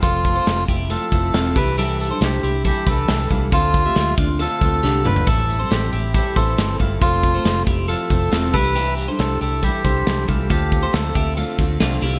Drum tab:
HH |x-x-x-x-x-x-x-x-|x-x-x-x-x-x-x-x-|x-x-x-x-x-x-----|x-x-x-x-x-x-x-x-|
SD |----o-------o---|----o-------o---|----o-------o---|----o-------o---|
T2 |----------------|----------------|--------------o-|----------------|
FT |----------------|----------------|---------------o|----------------|
BD |o-o---o---o---o-|--------o-o---o-|o-o---o---o-----|o-------o-o---o-|

HH |x-x-x-x-x-x-x-x-|x-x-x-x-x-x-x-x-|x-x-x-x-x-x-x-x-|
SD |----o-------o---|----o-------o---|----o-------o---|
T2 |----------------|----------------|----------------|
FT |----------------|----------------|----------------|
BD |o-o---o---o---o-|--------o-o---o-|o-o---o---o-----|